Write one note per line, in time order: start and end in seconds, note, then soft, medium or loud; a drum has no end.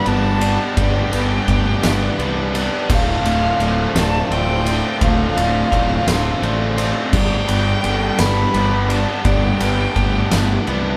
0.00 0.75 G2 medium
0.00 0.42 D4 medium
0.00 1.13 G4 medium
0.00 2.86 G4 medium
0.00 0.42 B4 medium
0.00 2.86 B4 medium
0.00 0.73 D5 medium
0.00 2.86 A5 medium
0.06 0.57 G1 loud
0.06 0.43 G3 medium
0.06 0.42 B3 medium
0.06 0.42 D4 medium
0.06 0.40 G4 medium
0.06 0.80 A5 loud
0.06 ride medium
0.41 0.76 G3 medium
0.41 0.76 B3 medium
0.41 0.78 D4 medium
0.41 0.77 G4 medium
0.41 ride medium
0.76 1.02 G1 loud
0.76 1.47 G2 loud
0.76 1.48 D3 loud
0.76 1.12 G3 loud
0.76 1.12 B3 loud
0.76 1.11 D4 loud
0.76 1.10 G4 loud
0.76 1.13 D5 loud
0.76 2.88 E5 medium
0.76 2.55 G5 loud
0.76 kick loud
0.76 ride loud
1.11 1.38 G1 medium
1.11 1.45 G3 medium
1.11 1.46 B3 medium
1.11 1.48 D4 medium
1.11 1.48 G4 medium
1.11 1.83 B4 medium
1.11 ride medium
1.46 1.73 G1 loud
1.46 1.84 G3 medium
1.46 1.83 B3 medium
1.46 1.82 D4 medium
1.46 1.81 G4 medium
1.46 kick medium
1.46 ride medium
1.82 2.08 G1 medium
1.82 2.17 G3 medium
1.82 2.17 B3 medium
1.82 2.19 D4 medium
1.82 2.20 G4 medium
1.82 snare loud
1.82 ride loud
2.18 2.69 C2 loud
2.18 2.55 G3 medium
2.18 2.54 B3 medium
2.18 2.55 D4 medium
2.18 2.52 G4 medium
2.18 2.89 B4 medium
2.18 ride medium
2.53 2.89 G3 medium
2.53 2.88 B3 medium
2.53 2.91 D4 medium
2.53 2.87 G4 medium
2.53 ride medium
2.89 3.15 D1 loud
2.89 3.64 D2 medium
2.89 3.61 A2 loud
2.89 3.27 D3 loud
2.89 3.26 A3 loud
2.89 3.25 C4 loud
2.89 7.10 F4 medium
2.89 3.23 F4 loud
2.89 7.10 C5 medium
2.89 9.22 D5 medium
2.89 3.60 F5 medium
2.89 3.92 F5 loud
2.89 7.10 A5 medium
2.89 kick loud
2.89 crash loud
3.24 3.49 D1 loud
3.24 3.58 D3 medium
3.24 3.60 A3 medium
3.24 3.61 C4 medium
3.24 3.62 F4 medium
3.24 ride medium
3.59 3.85 D1 medium
3.59 3.96 D3 medium
3.59 3.96 A3 medium
3.59 3.95 C4 medium
3.59 3.94 F4 medium
3.59 3.96 C5 medium
3.59 ride medium
3.95 4.20 D1 loud
3.95 4.29 D3 medium
3.95 4.31 A3 medium
3.95 4.31 C4 medium
3.95 4.32 F4 medium
3.95 4.67 D5 medium
3.95 4.30 A5 loud
3.95 snare loud
3.95 ride loud
4.31 4.81 D1 loud
4.31 4.67 D3 medium
4.31 4.67 A3 medium
4.31 4.66 C4 medium
4.31 4.64 F4 medium
4.31 5.04 G5 loud
4.31 ride medium
4.66 5.01 D3 medium
4.66 5.02 A3 medium
4.66 5.02 C4 medium
4.66 5.03 F4 medium
4.66 ride medium
5.01 5.27 D1 loud
5.01 5.72 D2 medium
5.01 5.72 A2 loud
5.01 5.38 D3 loud
5.01 5.38 A3 loud
5.01 5.36 C4 loud
5.01 5.35 F4 loud
5.01 5.37 F5 medium
5.01 6.79 F5 loud
5.01 kick loud
5.01 ride loud
5.36 5.62 D1 loud
5.36 5.70 D3 medium
5.36 5.72 A3 medium
5.36 5.72 C4 medium
5.36 5.73 F4 medium
5.36 6.08 D5 medium
5.36 ride medium
5.71 5.97 D1 loud
5.71 6.09 D3 medium
5.71 6.09 A3 medium
5.71 6.07 C4 medium
5.71 6.06 F4 medium
5.71 kick medium
5.71 ride medium
6.07 6.32 D1 loud
6.07 6.40 D3 medium
6.07 6.42 A3 medium
6.07 6.42 C4 medium
6.07 6.43 F4 medium
6.07 snare loud
6.07 ride loud
6.41 6.92 A1 loud
6.41 6.79 D3 medium
6.41 6.79 A3 medium
6.41 6.77 C4 medium
6.41 6.76 F4 medium
6.41 7.12 D5 medium
6.41 ride medium
6.77 7.12 D3 medium
6.77 7.14 A3 medium
6.77 7.12 C4 medium
6.77 7.11 F4 medium
6.77 ride medium
7.12 7.38 G1 loud
7.12 9.25 G2 loud
7.12 7.84 D3 loud
7.12 7.51 G3 loud
7.12 7.51 B3 loud
7.12 7.49 D4 loud
7.12 10.97 G4 medium
7.12 7.48 G4 loud
7.12 10.97 B4 medium
7.12 7.84 D5 loud
7.12 8.21 G5 loud
7.12 10.97 A5 medium
7.12 kick loud
7.12 crash loud
7.49 7.74 G1 loud
7.49 7.83 G3 medium
7.49 7.85 B3 medium
7.49 7.86 D4 medium
7.49 7.86 G4 medium
7.49 ride medium
7.83 8.09 G1 medium
7.83 8.22 G3 medium
7.83 8.21 B3 medium
7.83 8.21 D4 medium
7.83 8.19 G4 medium
7.83 8.19 A4 medium
7.83 ride medium
8.19 8.45 G1 medium
8.19 8.55 B3 medium
8.19 8.56 D4 medium
8.19 8.56 G4 medium
8.19 8.90 B4 medium
8.19 8.92 B5 loud
8.19 snare loud
8.19 ride loud
8.23 8.54 G3 medium
8.54 9.05 G1 loud
8.54 8.92 G3 medium
8.54 8.91 B3 medium
8.54 8.91 D4 medium
8.54 8.89 G4 medium
8.54 ride medium
8.90 9.26 G3 medium
8.90 9.26 B3 medium
8.90 9.27 D4 medium
8.90 9.27 G4 medium
8.90 9.27 A5 loud
8.90 ride medium
9.25 9.50 G1 loud
9.25 9.97 G2 medium
9.25 9.97 D3 loud
9.25 9.63 G3 loud
9.25 9.62 B3 loud
9.25 9.61 D4 loud
9.25 9.60 G4 loud
9.25 9.61 D5 medium
9.25 10.97 E5 medium
9.25 10.67 G5 loud
9.25 kick loud
9.25 ride loud
9.60 9.86 G1 loud
9.60 9.96 B3 medium
9.60 9.97 D4 medium
9.60 9.98 G4 medium
9.60 10.31 B4 medium
9.60 ride medium
9.64 9.95 G3 medium
9.96 10.21 G1 loud
9.96 10.35 G3 medium
9.96 10.34 B3 medium
9.96 10.33 D4 medium
9.96 10.31 G4 medium
9.96 kick medium
9.96 ride medium
10.32 10.57 G1 medium
10.32 10.67 B3 medium
10.32 10.68 D4 medium
10.32 10.70 G4 medium
10.32 snare loud
10.32 ride loud
10.36 10.67 G3 medium
10.67 10.97 C2 medium
10.67 10.97 G3 medium
10.67 10.97 B3 medium
10.67 10.97 D4 medium
10.67 10.97 G4 medium
10.67 10.97 B4 medium
10.67 ride medium